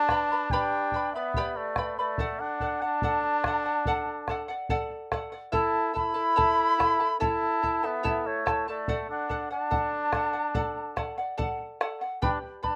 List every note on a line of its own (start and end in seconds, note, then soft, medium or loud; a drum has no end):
0.00 0.52 D4 loud
0.00 0.53 A5 loud
0.09 0.31 B4 medium
0.09 0.31 D5 medium
0.09 0.30 G5 medium
0.09 0.31 B5 medium
0.09 bombo rim medium
0.09 bombo low medium
0.32 0.52 B4 soft
0.32 0.52 D5 soft
0.32 0.52 B5 soft
0.50 1.14 D4 medium
0.50 0.94 G4 medium
0.50 0.93 B4 medium
0.50 1.13 G5 medium
0.50 0.93 G5 medium
0.50 0.94 B5 medium
0.50 bombo low medium
0.54 0.93 D5 medium
0.92 1.15 B4 medium
0.92 1.15 D5 medium
0.92 1.14 G5 medium
0.92 bombo low soft
0.96 1.14 B5 medium
1.13 1.58 B3 medium
1.13 1.36 B4 soft
1.13 1.36 D5 soft
1.13 1.58 E5 medium
1.13 1.36 B5 medium
1.34 1.78 G4 medium
1.34 1.77 B4 medium
1.34 1.77 D5 medium
1.34 1.76 G5 medium
1.34 1.77 B5 medium
1.34 bombo low medium
1.56 1.98 A3 medium
1.56 1.97 D5 medium
1.76 1.98 B4 medium
1.76 1.98 D5 medium
1.76 1.98 G5 medium
1.76 1.98 B5 medium
1.76 bombo rim medium
1.76 bombo low medium
1.98 2.42 A3 medium
1.98 2.19 B4 soft
1.98 2.41 D5 medium
1.98 2.18 D5 soft
1.98 2.19 B5 soft
2.18 2.60 A4 medium
2.18 2.60 D5 medium
2.18 2.61 F#5 medium
2.18 bombo low medium
2.39 2.83 D4 medium
2.39 2.83 F#5 medium
2.60 2.81 A4 medium
2.60 2.82 D5 medium
2.60 2.81 F#5 medium
2.60 bombo low soft
2.81 4.50 D4 medium
2.81 3.02 D5 soft
2.81 3.02 F#5 medium
2.81 4.49 A5 loud
3.02 3.45 A4 medium
3.02 3.45 D5 medium
3.02 3.45 F#5 medium
3.02 bombo low medium
3.44 3.66 A4 medium
3.44 3.66 D5 medium
3.44 3.64 F#5 medium
3.44 bombo rim soft
3.44 bombo low medium
3.66 3.86 D5 soft
3.66 3.86 F#5 soft
3.85 4.28 A4 medium
3.85 4.28 D5 medium
3.85 4.29 F#5 loud
3.85 bombo low medium
4.28 4.49 A4 medium
4.28 4.49 D5 medium
4.28 4.47 F#5 medium
4.28 bombo rim soft
4.28 bombo low soft
4.48 4.69 D5 soft
4.48 4.69 F#5 medium
4.69 5.10 A4 medium
4.69 5.11 D5 medium
4.69 5.12 F#5 medium
4.69 bombo low medium
5.12 5.33 A4 medium
5.12 5.32 D5 medium
5.12 5.31 F#5 medium
5.12 bombo rim medium
5.12 bombo low soft
5.32 5.52 D5 soft
5.32 5.52 F#5 medium
5.52 5.93 E4 medium
5.52 5.92 E4 medium
5.52 5.93 A4 medium
5.52 5.95 C#5 medium
5.52 5.92 E5 medium
5.52 5.94 A5 medium
5.52 5.92 A5 loud
5.52 bombo low medium
5.94 6.15 E4 medium
5.94 7.18 E4 loud
5.94 6.14 A4 medium
5.94 6.14 E5 medium
5.94 6.13 A5 medium
5.94 7.17 B5 loud
5.94 bombo low soft
6.14 6.36 E4 soft
6.14 6.36 A4 medium
6.14 6.36 A5 medium
6.36 6.77 E4 medium
6.36 6.78 A4 medium
6.36 6.78 C#5 medium
6.36 6.77 E5 medium
6.36 6.78 A5 medium
6.36 bombo low medium
6.78 7.00 E4 medium
6.78 6.99 A4 medium
6.78 6.99 E5 medium
6.78 6.99 A5 medium
6.78 bombo rim medium
6.78 bombo low soft
7.00 7.19 E4 soft
7.00 7.19 A4 soft
7.00 7.20 A5 soft
7.20 7.62 E4 medium
7.20 7.87 E4 medium
7.20 7.62 A4 medium
7.20 7.62 C#5 medium
7.20 7.61 E5 medium
7.20 7.63 A5 medium
7.20 7.86 A5 loud
7.20 bombo low medium
7.63 7.82 E4 medium
7.63 7.82 A4 medium
7.63 7.83 E5 medium
7.63 7.82 A5 medium
7.63 bombo low soft
7.83 8.28 B3 medium
7.83 8.02 E4 soft
7.83 8.03 A4 soft
7.83 8.28 E5 medium
7.83 8.03 A5 medium
8.03 8.45 E4 medium
8.03 8.46 A4 medium
8.03 8.46 C#5 medium
8.03 8.44 E5 medium
8.03 8.46 A5 medium
8.03 bombo low medium
8.27 8.68 A3 medium
8.27 8.68 C#5 medium
8.46 8.67 E4 medium
8.46 8.67 A4 medium
8.46 8.67 E5 medium
8.46 8.67 A5 medium
8.46 bombo rim medium
8.46 bombo low medium
8.68 9.07 A3 medium
8.68 8.88 E4 soft
8.68 8.87 A4 soft
8.68 9.07 D5 medium
8.68 8.88 A5 medium
8.88 9.28 A4 medium
8.88 9.29 D5 medium
8.88 9.30 F#5 medium
8.88 bombo low medium
9.10 9.48 D4 medium
9.10 9.49 F#5 medium
9.29 9.50 A4 medium
9.29 9.51 D5 medium
9.29 9.49 F#5 medium
9.29 bombo low medium
9.51 11.14 D4 medium
9.51 9.70 D5 soft
9.51 9.70 F#5 medium
9.51 11.14 A5 medium
9.71 10.11 A4 medium
9.71 10.13 D5 medium
9.71 10.13 F#5 medium
9.71 bombo low medium
10.12 10.34 A4 medium
10.12 10.33 D5 medium
10.12 10.32 F#5 medium
10.12 bombo rim medium
10.12 bombo low medium
10.33 10.54 D5 soft
10.33 10.54 F#5 soft
10.54 10.95 A4 medium
10.54 10.96 D5 medium
10.54 10.96 F#5 medium
10.54 bombo low medium
10.96 11.17 A4 medium
10.96 11.18 D5 medium
10.96 11.17 F#5 medium
10.96 bombo rim soft
10.96 bombo low medium
11.18 11.36 D5 soft
11.18 11.37 F#5 medium
11.37 11.79 A4 medium
11.37 11.80 D5 medium
11.37 11.80 F#5 medium
11.37 bombo low medium
11.81 12.01 A4 medium
11.81 12.01 D5 medium
11.81 12.00 F#5 medium
11.81 bombo rim medium
12.01 12.21 D5 soft
12.01 12.22 F#5 medium
12.22 12.39 D4 medium
12.22 12.63 G4 medium
12.22 12.62 B4 medium
12.22 12.62 D5 medium
12.22 12.31 G5 loud
12.22 12.62 G5 medium
12.22 12.63 B5 medium
12.22 bombo low medium
12.63 12.76 D4 loud
12.63 12.76 B4 medium
12.63 12.76 D5 medium
12.63 12.76 G5 medium
12.63 12.76 A5 loud
12.63 12.76 B5 medium
12.63 bombo low medium